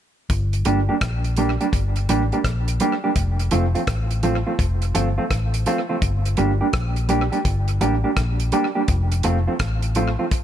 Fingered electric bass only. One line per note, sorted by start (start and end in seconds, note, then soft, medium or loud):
0.30 0.63 G1 loud
0.66 0.87 G1 medium
1.02 1.57 A#1 loud
1.73 2.06 G1 medium
2.10 2.31 A1 medium
2.45 2.78 A#1 medium
3.16 3.49 F1 loud
3.53 3.74 F1 loud
3.88 4.43 A1 medium
4.59 4.92 F1 medium
4.96 5.17 G1 medium
5.31 5.64 A1 medium
6.02 6.35 G1 loud
6.39 6.60 G1 medium
6.74 7.29 A#1 loud
7.46 7.78 G1 loud
7.82 8.03 A1 medium
8.17 8.50 A#1 medium
8.89 9.22 F1 loud
9.25 9.46 F1 loud
9.61 10.15 A1 medium